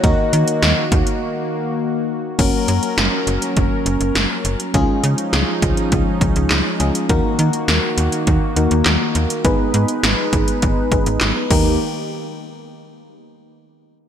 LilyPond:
<<
  \new Staff \with { instrumentName = "Soft synth lead" } { \time 4/4 \key ees \minor \tempo 4 = 102 ees''2. r4 | r1 | r1 | r1 |
r1 | r1 | }
  \new Staff \with { instrumentName = "FM electric piano" } { \time 4/4 \key ees \minor <bes ees' ges' bes'>1 | <bes des' ges' bes'>1 | <aes des' f' aes'>2.~ <aes des' f' aes'>8 <aes des' f' aes'>8 | <bes ees' ges' bes'>2~ <bes ees' ges' bes'>8 <bes ees' ges' bes'>4. |
<ces' ees' aes' ces''>2~ <ces' ees' aes' ces''>8 <ces' ees' aes' ces''>4 <bes ees' g' bes'>8 | r1 | }
  \new Staff \with { instrumentName = "Analog synth pad" } { \time 4/4 \key ees \minor <ees bes ges'>1 | <ges des' bes'>1 | <f des' ees'>1 | <ees bes ges'>1 |
<aes ees' ces''>2.~ <aes ees' ces''>8 <ees bes g'>8 | r1 | }
  \new Staff \with { instrumentName = "FM bass" } { \clef bass \time 4/4 \key ees \minor ees,16 r16 ees16 r16 ees,16 r16 ees,16 r2 r16 | ges,,16 r16 ges,16 r16 ges,,16 r16 ges,,16 r16 ges,,16 r16 ges,,16 ges,,16 ges,,16 r16 ges,,16 r16 | des,16 r16 des16 r16 des,16 r16 des,16 r16 des,16 r16 des,16 des,16 des,16 r16 des,16 r16 | ees,16 r16 ees16 r16 ees,16 r16 ees,16 r16 ees,16 r16 ees,16 ees,16 ees,16 r16 ees,16 r16 |
aes,,16 r16 aes,16 r16 aes,,16 r16 aes,,16 r16 aes,,16 r16 aes,,16 aes,,16 aes,,16 r16 ees,8 | r1 | }
  \new DrumStaff \with { instrumentName = "Drums" } \drummode { \time 4/4 <hh bd>8 hh16 hh16 <hh sn>8 <hh bd>16 hh16 r4 r4 | <cymc hh bd>8 hh16 hh16 <hh sn>8 hh16 hh16 <hh bd>8 hh16 hh16 <hh sn>8 hh16 hh16 | <hh bd>8 hh16 hh16 <hh sn>8 <hh bd>16 hh16 <hh bd>8 <hh bd>16 hh16 <hc hh sn>8 hh16 hh16 | <hh bd>8 hh16 hh16 <hh sn>8 hh16 hh16 <hh bd>8 hh16 hh16 <hc hh sn>8 hh16 hh16 |
<hh bd>8 hh16 hh16 <hh sn>8 <hh bd>16 hh16 <hh bd>8 <hh bd>16 hh16 <hc hh sn>8 <cymc bd>8 | r4 r4 r4 r4 | }
>>